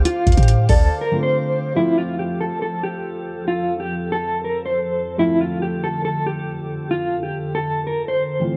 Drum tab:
HH |x---xxxxx---o-------------------|--------------------------------|--------------------------------|--------------------------------|
BD |----o-o-----o-------------------|--------------------------------|--------------------------------|--------------------------------|

HH |--------------------------------|
BD |--------------------------------|